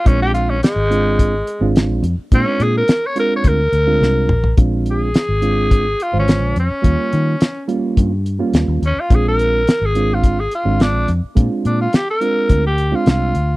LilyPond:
<<
  \new Staff \with { instrumentName = "Tenor saxophone" } { \time 4/4 \key bes \mixolydian \tempo 4 = 106 des'16 g'16 f'16 des'16 aes2 r4 | des'8 aes'16 bes'8 des''16 bes'16 des''16 bes'2 | r8 aes'2 f'16 des'8. des'8~ | des'4. r2 des'16 f'16 |
aes'16 bes'4 aes'8 f'8 aes'16 f'8 d'8 r8 | r8 d'16 f'16 g'16 bes'4 g'8 f'16 f'4 | }
  \new Staff \with { instrumentName = "Reed electric piano" } { \time 4/4 \key bes \mixolydian <aes c' d' f'>4 r8 <aes c' d' f'>8. r8 <aes c' d' f'>8. r8 | <aes c' d' f'>4 r8 <aes c' d' f'>8. r8 <aes c' d' f'>8. r8 | <aes c' d' f'>4 r8 <aes c' d' f'>8. r8 <d aes f' c''>8. r8 | <g bes des' f'>4 r8 <g bes des' f'>8. r8 <g bes des' f'>8. r8 |
<aes c' d' f'>4 r8 <aes c' d' f'>8. r8 <aes c' d' f'>8. r8 | <aes c' d' f'>4 r8 <aes c' d' f'>8. r8 <aes c' d' f'>8. r8 | }
  \new Staff \with { instrumentName = "Fingered electric bass" } { \clef bass \time 4/4 \key bes \mixolydian bes,,4~ bes,,16 aes,,4. aes,,8 bes,,16 f,16 r16 | bes,16 r16 bes,8 r4 d,8 d,8 c,8 bes,,8 | bes,,4~ bes,,16 aes,,4. aes,,8 bes,,16 f,16 r16 | ees,16 r16 ees8 r4 g,4 ees,16 ees,16 ees,16 r16 |
bes,,4~ bes,,16 aes,,4. aes,,8 bes,,16 f,16 r16 | bes,16 r16 bes,8 r4 d,4 c,8 d,8 | }
  \new DrumStaff \with { instrumentName = "Drums" } \drummode { \time 4/4 <hh bd>8 hh8 <hh sn>8 hh8 <hh bd>8 hh8 <hh sn>8 hh8 | <hh bd>8 hh8 <hh sn>8 hh8 <hh bd>8 hh8 sn8 toml16 tomfh16 | <hh bd>8 hh8 <hh sn>8 hh8 <hh bd>8 hh8 <hh sn>8 hh8 | <hh bd>8 hh8 <hh sn>8 hh8 <hh bd>8 hh8 <hh sn>8 hh8 |
<hh bd>8 hh8 <hh sn>8 hh8 <hh bd>8 hh8 <hh sn>8 hh8 | <hh bd>8 hh8 <hh sn>8 hh8 <hh bd>8 hh8 <hh sn>8 hh8 | }
>>